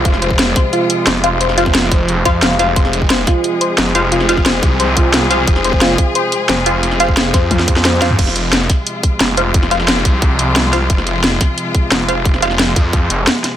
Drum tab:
CC |----------------|----------------|----------------|----------------|
HH |x-x-x-x-x-x-x-x-|x-x-x-x-x-x-x-x-|x-x-x-x-x-x-x-x-|x-x-x-x-x-x-x-x-|
SD |-o--o-o-----o---|-o-oo-------o---|-o--o-o-----o---|-o-oo-------o---|
T1 |----------------|----------------|----------------|----------------|
T2 |----------------|----------------|----------------|----------------|
BD |o--o--o---------|---o--o---o-----|o--o--o---------|---o--o---o-----|

CC |----------------|----------------|x---------------|----------------|
HH |x-x-x-x-x-x-x-x-|x-x-x-x-x-x-x-x-|x-x-x-x-x-x-x-x-|x-x-x-x-x-x-x-x-|
SD |-o--o-------o---|-o--o-o--o-oo-o-|-o--o-o-----o---|-o-oo-------o-o-|
T1 |----------------|--------o-------|----------------|----------------|
T2 |----------------|---------------o|----------------|----------------|
BD |o--o--o---------|---o--o-o-o-----|o-----o---o-----|o-----o-o-------|

CC |----------------|----------------|
HH |x-x-x-x-x-x-x-x-|x-x-x-x-x-x-x-x-|
SD |-o--o-o-----o---|-o-oo-------o-o-|
T1 |----------------|----------------|
T2 |----------------|----------------|
BD |o-----o---o-----|o-----o-o-------|